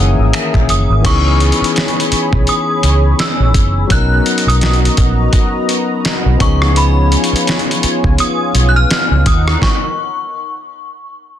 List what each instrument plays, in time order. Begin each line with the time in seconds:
Already playing: fingered electric bass F#1, tine electric piano D#3 E3 A#3 C#4 G#4 C#5 F#5, analog synth pad A#4 E5 G#5 D#6
0.18 fingered electric bass G#1
0.33 tine electric piano E5, finger snap, closed hi-hat
0.54 fingered electric bass A#1, finger snap, kick
0.69 fingered electric bass F#1, synth bell D#6, closed hi-hat
0.90 fingered electric bass G#1
1.01 tine electric piano E3 B3 C#4, analog synth pad G#4 C#5 G#5 B5, kick, closed hi-hat, crash
1.06 tine electric piano D#4 G#4, synth bell C#6
1.40 closed hi-hat
1.52 closed hi-hat
1.61 muted fingered electric bass stroke, closed hi-hat
1.76 snare, closed hi-hat
1.88 closed hi-hat
2.00 closed hi-hat
2.12 muted fingered electric bass stroke, closed hi-hat
2.33 fingered electric bass B1, kick
2.47 synth bell D#6, closed hi-hat
2.83 fingered electric bass C#2, closed hi-hat
3.19 synth bell E6, snare, closed hi-hat
3.40 fingered electric bass A#1
3.54 fingered electric bass F#1, kick, closed hi-hat
3.87 fingered electric bass B1, tine electric piano F#3 B3 C#4, analog synth pad B3 F#4 D#5 A#5, kick, closed hi-hat
3.92 tine electric piano D#4 A#4, synth bell F#6
4.26 closed hi-hat
4.38 closed hi-hat
4.47 fingered electric bass B1, synth bell D#6, closed hi-hat
4.61 snare, closed hi-hat
4.73 closed hi-hat
4.85 closed hi-hat
4.97 fingered electric bass A#1, kick, closed hi-hat
5.33 kick, closed hi-hat
5.69 closed hi-hat
6.05 snare, closed hi-hat
6.26 fingered electric bass B1
6.37 fingered electric bass C#2, tine electric piano F3 B3 C#4, analog synth pad F4 C#5 G#5, kick, closed hi-hat
6.41 tine electric piano D#4 G#4, synth bell C#6
6.62 cross-stick
6.76 synth bell B5, closed hi-hat
7.12 closed hi-hat
7.24 closed hi-hat
7.33 muted fingered electric bass stroke, closed hi-hat
7.47 snare, closed hi-hat
7.59 closed hi-hat
7.71 closed hi-hat
7.83 muted fingered electric bass stroke, closed hi-hat
8.04 fingered electric bass C#2, kick
8.18 synth bell D#6, closed hi-hat
8.55 fingered electric bass B1, closed hi-hat
8.69 synth bell F#6
8.76 synth bell F6
8.91 snare, closed hi-hat
9.11 fingered electric bass C#2
9.26 fingered electric bass D#2, analog synth pad D#4 A#4 F#5, synth bell D#6, kick, closed hi-hat
9.48 cross-stick
9.62 synth bell C#6, kick, snare